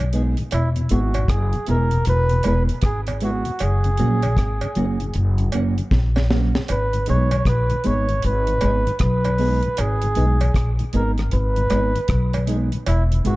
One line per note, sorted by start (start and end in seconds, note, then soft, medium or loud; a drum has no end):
0.00 0.34 B1 medium
0.13 0.22 G#3 medium
0.13 0.34 G#3 medium
0.13 0.23 B3 medium
0.13 0.35 B3 medium
0.13 0.23 D#4 medium
0.13 0.35 D#4 medium
0.13 0.35 G#4 medium
0.13 closed hi-hat medium
0.37 0.43 G#2 medium
0.37 0.43 D#3 medium
0.37 closed hi-hat medium
0.51 0.88 E1 medium
0.51 0.70 E4 medium
0.51 closed hi-hat medium
0.51 cowbell medium
0.76 0.82 E2 medium
0.76 0.82 B2 medium
0.76 closed hi-hat medium
0.89 1.27 G#1 loud
0.89 1.00 G#3 medium
0.89 1.12 G#3 medium
0.89 1.00 B3 medium
0.89 1.12 B3 medium
0.89 1.00 E4 medium
0.89 1.12 E4 medium
0.89 1.32 F#4 medium
0.89 1.13 G#4 medium
0.89 closed hi-hat medium
1.14 1.20 E2 medium
1.14 1.20 B2 medium
1.14 closed hi-hat medium
1.14 cowbell medium
1.28 1.52 F#1 medium
1.28 1.68 G#4 medium
1.28 kick loud
1.28 cross-stick loud
1.28 closed hi-hat medium
1.53 1.59 E2 medium
1.53 1.59 B2 soft
1.53 closed hi-hat soft
1.67 2.04 E1 medium
1.67 1.77 G#3 medium
1.67 1.89 G#3 medium
1.67 1.77 B3 medium
1.67 1.89 B3 medium
1.67 1.77 E4 medium
1.67 1.89 E4 medium
1.67 1.90 G#4 medium
1.67 2.04 A#4 medium
1.67 closed hi-hat medium
1.91 1.98 E2 medium
1.91 1.98 B2 medium
1.91 closed hi-hat soft
2.05 2.42 E1 loud
2.05 2.43 B4 loud
2.05 closed hi-hat medium
2.29 2.36 E2 medium
2.29 2.36 B2 medium
2.29 closed hi-hat soft
2.43 2.68 E1 medium
2.43 2.66 G#3 medium
2.43 2.54 G#3 medium
2.43 2.54 B3 medium
2.43 2.66 B3 medium
2.43 2.55 E4 medium
2.43 2.67 E4 medium
2.43 2.67 G#4 medium
2.43 closed hi-hat medium
2.43 cowbell medium
2.47 2.63 B4 medium
2.69 2.75 E2 medium
2.69 2.75 B2 medium
2.69 closed hi-hat soft
2.81 3.42 G#1 medium
2.81 3.01 G#4 loud
2.81 kick loud
2.81 cross-stick loud
2.81 closed hi-hat medium
3.07 3.13 E2 medium
3.07 3.13 B2 medium
3.07 closed hi-hat medium
3.07 cowbell medium
3.21 3.31 G#3 medium
3.21 3.43 G#3 medium
3.21 3.31 B3 medium
3.21 3.43 B3 medium
3.21 3.31 E4 medium
3.21 3.43 E4 loud
3.21 3.64 F#4 medium
3.21 3.44 G#4 medium
3.21 closed hi-hat medium
3.45 3.52 E2 medium
3.45 3.52 B2 medium
3.45 closed hi-hat medium
3.59 3.96 F#1 medium
3.59 5.16 G#4 loud
3.59 closed hi-hat medium
3.59 cowbell medium
3.84 3.90 F#2 medium
3.84 3.90 C#3 medium
3.84 closed hi-hat soft
3.97 4.35 A#1 medium
3.97 4.08 F#3 medium
3.97 4.20 F#3 medium
3.97 4.08 A#3 medium
3.97 4.20 A#3 medium
3.97 4.08 C#4 medium
3.97 4.20 C#4 medium
3.97 4.21 F#4 medium
3.97 closed hi-hat medium
4.22 4.29 F#2 medium
4.22 4.29 C#3 soft
4.22 closed hi-hat soft
4.22 cowbell medium
4.37 4.60 G#1 medium
4.37 kick loud
4.37 cross-stick loud
4.37 closed hi-hat medium
4.61 4.67 F#2 medium
4.61 4.68 C#3 medium
4.61 closed hi-hat soft
4.61 cowbell medium
4.75 5.12 F#1 medium
4.75 4.97 F#3 medium
4.75 4.86 F#3 medium
4.75 4.97 A#3 medium
4.75 4.86 A#3 medium
4.75 4.86 C#4 medium
4.75 4.98 C#4 medium
4.75 4.98 F#4 medium
4.75 closed hi-hat medium
5.00 5.06 F#2 medium
5.00 5.06 C#3 medium
5.00 closed hi-hat soft
5.14 5.51 F#1 medium
5.14 closed hi-hat medium
5.38 5.45 F#2 medium
5.38 5.45 C#3 soft
5.38 closed hi-hat soft
5.52 5.76 F#1 medium
5.52 5.74 F#3 medium
5.52 5.63 F#3 medium
5.52 5.74 A#3 medium
5.52 5.63 A#3 medium
5.52 5.75 C#4 medium
5.52 5.63 C#4 medium
5.52 5.75 F#4 medium
5.52 closed hi-hat medium
5.52 cowbell medium
5.78 5.83 F#2 medium
5.78 5.83 C#3 soft
5.78 closed hi-hat soft
5.91 6.51 A#1 medium
5.91 kick loud
5.91 snare medium
6.16 6.22 F#2 medium
6.16 6.22 C#3 medium
6.16 snare medium
6.16 cowbell medium
6.30 6.51 F#3 medium
6.30 6.40 F#3 medium
6.30 6.52 A#3 medium
6.30 6.40 A#3 medium
6.30 6.40 C#4 medium
6.30 6.52 C#4 medium
6.30 6.52 F#4 medium
6.30 snare medium
6.55 6.60 F#2 medium
6.55 6.60 C#3 medium
6.55 snare medium
6.68 7.05 G#1 medium
6.68 7.06 B4 loud
6.68 closed hi-hat medium
6.68 cowbell medium
6.93 6.99 G#2 medium
6.93 6.99 D#3 medium
6.93 closed hi-hat medium
7.06 7.44 B1 medium
7.06 7.17 G#3 medium
7.06 7.29 G#3 medium
7.06 7.17 B3 medium
7.06 7.29 B3 medium
7.06 7.17 D#4 medium
7.06 7.29 D#4 medium
7.06 7.29 G#4 medium
7.06 7.44 C#5 loud
7.06 closed hi-hat medium
7.31 7.37 G#2 medium
7.31 7.37 D#3 medium
7.31 closed hi-hat soft
7.31 cowbell medium
7.45 7.69 A#1 loud
7.45 7.88 B4 loud
7.45 kick loud
7.45 cross-stick loud
7.45 closed hi-hat medium
7.70 7.76 G#2 medium
7.70 7.76 D#3 medium
7.70 closed hi-hat soft
7.84 8.21 G#1 medium
7.84 8.05 G#3 medium
7.84 7.94 G#3 medium
7.84 7.94 B3 medium
7.84 8.06 B3 medium
7.84 7.94 D#4 medium
7.84 8.06 D#4 medium
7.84 8.06 G#4 medium
7.84 8.24 C#5 loud
7.84 closed hi-hat medium
8.09 8.15 G#2 medium
8.09 8.15 D#3 medium
8.09 closed hi-hat soft
8.22 8.60 G#1 loud
8.22 8.97 B4 loud
8.22 closed hi-hat medium
8.47 8.53 G#2 medium
8.47 8.53 D#3 medium
8.47 closed hi-hat soft
8.61 8.85 G#1 medium
8.61 8.71 G#3 medium
8.61 8.83 G#3 medium
8.61 8.71 B3 medium
8.61 8.83 B3 medium
8.61 8.71 D#4 medium
8.61 8.84 D#4 medium
8.61 8.84 G#4 medium
8.61 closed hi-hat medium
8.61 cowbell medium
8.87 8.92 G#2 medium
8.87 8.92 D#3 medium
8.87 closed hi-hat soft
8.99 9.60 B1 loud
8.99 9.82 B4 medium
8.99 kick loud
8.99 cross-stick loud
8.99 closed hi-hat medium
9.24 9.31 G#2 medium
9.24 9.31 D#3 medium
9.24 closed hi-hat medium
9.24 cowbell medium
9.38 9.60 G#3 medium
9.38 9.49 G#3 medium
9.38 9.60 B3 medium
9.38 9.49 B3 medium
9.38 9.49 D#4 medium
9.38 9.61 D#4 medium
9.38 9.61 G#4 loud
9.38 open hi-hat soft
9.63 9.69 G#2 medium
9.63 9.69 D#3 medium
9.63 closed hi-hat medium
9.77 10.14 G#1 medium
9.77 10.71 G#4 medium
9.77 closed hi-hat medium
9.77 cowbell medium
10.02 10.08 G#2 medium
10.02 10.08 D#3 medium
10.02 closed hi-hat medium
10.15 10.52 B1 medium
10.15 10.37 G#3 medium
10.15 10.26 G#3 medium
10.15 10.26 B3 medium
10.15 10.38 B3 medium
10.15 10.26 D#4 medium
10.15 10.38 D#4 medium
10.15 10.38 G#4 medium
10.15 closed hi-hat medium
10.41 10.46 G#2 medium
10.41 10.46 D#3 soft
10.41 closed hi-hat medium
10.41 cowbell medium
10.54 10.78 A#1 medium
10.54 kick loud
10.54 cross-stick loud
10.54 closed hi-hat medium
10.79 10.85 G#2 medium
10.79 10.85 D#3 medium
10.79 closed hi-hat medium
10.93 11.29 G#1 medium
10.93 11.14 G#3 medium
10.93 11.03 G#3 medium
10.93 11.15 B3 medium
10.93 11.03 B3 medium
10.93 11.03 D#4 medium
10.93 11.15 D#4 medium
10.93 11.15 G#4 medium
10.93 11.12 A#4 medium
10.93 closed hi-hat medium
11.18 11.24 G#2 medium
11.18 11.24 D#3 medium
11.18 cross-stick medium
11.18 closed hi-hat soft
11.31 11.68 G#1 loud
11.31 12.45 B4 loud
11.31 closed hi-hat medium
11.56 11.62 G#2 medium
11.56 11.62 D#3 medium
11.56 closed hi-hat medium
11.70 11.94 G#1 medium
11.70 11.91 G#3 medium
11.70 11.80 G#3 medium
11.70 11.92 B3 medium
11.70 11.80 B3 medium
11.70 11.92 D#4 medium
11.70 11.81 D#4 medium
11.70 11.92 G#4 medium
11.70 cross-stick medium
11.70 closed hi-hat medium
11.70 cowbell medium
11.96 12.01 G#2 medium
11.96 12.01 D#3 medium
11.96 closed hi-hat soft
12.08 12.68 B1 medium
12.08 kick loud
12.08 cross-stick loud
12.08 closed hi-hat medium
12.33 12.39 G#2 medium
12.33 12.39 D#3 medium
12.33 closed hi-hat medium
12.33 cowbell medium
12.47 12.68 G#3 medium
12.47 12.57 G#3 medium
12.47 12.69 B3 medium
12.47 12.57 B3 medium
12.47 12.57 D#4 medium
12.47 12.69 D#4 medium
12.47 12.70 G#4 medium
12.47 closed hi-hat medium
12.72 12.78 G#2 medium
12.72 12.78 D#3 medium
12.72 closed hi-hat medium
12.86 13.22 E1 loud
12.86 13.04 E4 medium
12.86 closed hi-hat medium
12.86 cowbell medium
13.12 13.17 E2 medium
13.12 13.17 B2 medium
13.12 closed hi-hat medium
13.24 13.36 G#1 medium
13.24 13.36 G#3 medium
13.24 13.35 G#3 medium
13.24 13.36 B3 medium
13.24 13.35 B3 medium
13.24 13.36 E4 medium
13.24 13.35 E4 medium
13.24 13.36 F#4 medium
13.24 13.36 G#4 medium
13.24 closed hi-hat medium